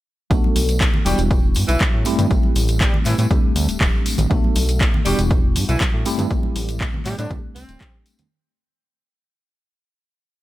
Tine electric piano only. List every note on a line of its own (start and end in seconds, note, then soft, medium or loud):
0.30 1.01 A3 medium
0.30 1.01 B3 medium
0.30 1.01 D4 medium
0.30 1.01 F#4 medium
0.30 1.01 A4 medium
1.05 2.01 G3 medium
1.05 2.01 B3 medium
1.05 2.01 D4 medium
1.05 2.01 E4 medium
1.05 2.01 F#4 medium
2.05 3.26 G3 medium
2.05 3.26 A3 medium
2.05 3.26 C4 medium
2.05 3.26 E4 medium
2.05 3.26 G4 loud
3.30 4.26 G3 medium
3.30 4.26 A3 medium
3.30 4.26 C4 medium
3.30 4.26 D4 medium
3.30 4.26 G4 medium
4.30 5.01 A3 medium
4.30 5.01 B3 medium
4.30 5.01 D4 medium
4.30 5.01 F#4 medium
4.30 5.01 A4 medium
5.05 6.01 G3 medium
5.05 6.01 B3 medium
5.05 6.01 D4 medium
5.05 6.01 E4 medium
5.05 6.01 F#4 medium
6.05 7.26 G3 medium
6.05 7.26 A3 medium
6.05 7.26 C4 medium
6.05 7.26 E4 medium
6.05 7.26 G4 loud
7.30 8.26 G3 medium
7.30 8.26 A3 medium
7.30 8.26 C4 medium
7.30 8.26 D4 medium
7.30 8.26 G4 medium